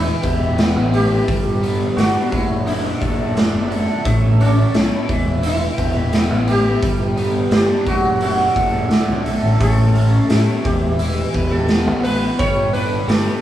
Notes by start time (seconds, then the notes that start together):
Already playing: E1 E3 E4 B4 E5 B5
0.22 E1 G4, kick, open hi-hat
0.58 B3 D4, snare, open hi-hat
0.76 A1
0.92 G4, open hi-hat
1.26 G1 G3 D5, kick, open hi-hat
1.63 B3, open hi-hat
1.97 G1 D4 F#4, snare, open hi-hat
2.30 F#1 F#3 E4 D5 E5 F#5, kick, open hi-hat
2.67 D4 E4, open hi-hat
3.00 F#1 A4, kick, open hi-hat
3.36 D4, snare, open hi-hat
3.53 F#1
3.70 A4, open hi-hat
4.05 A1 A3 D4 C#5 A5, kick, open hi-hat
4.40 C#4, open hi-hat
4.74 B1 E4, snare, open hi-hat
5.08 E1 E3 B4 E5 G5, kick, open hi-hat
5.42 E4, open hi-hat
5.77 E1 G4, kick, open hi-hat
6.12 B3, snare, open hi-hat
6.30 A1
6.47 G4, open hi-hat
6.82 G1 G3 D5, kick, open hi-hat
7.17 B3, open hi-hat
7.51 G1 D4 G4, snare, open hi-hat
7.85 F#1 F#3 F#4 E5 F#5, kick, open hi-hat
8.21 E4 F#4, open hi-hat
8.56 F#1 A4, kick, open hi-hat
8.89 D2 D4, snare, open hi-hat
9.08 C#2
9.25 B1 A4, open hi-hat
9.42 A1
9.60 A1 A3 A4 C#5 A5, kick, open hi-hat
9.95 C#4, open hi-hat
10.30 A2 E4 G4, snare, open hi-hat
10.64 E1 E3 G4 B4 G5, kick, open hi-hat
10.99 E4, open hi-hat
11.34 E1 B4, kick, open hi-hat
11.51 A4
11.68 B3, snare, open hi-hat
11.87 A1
12.03 B4, open hi-hat
12.39 G1 G3 D4 C#5, kick, open hi-hat
12.73 D4 B4, open hi-hat
13.07 G1 G4 A4, snare, open hi-hat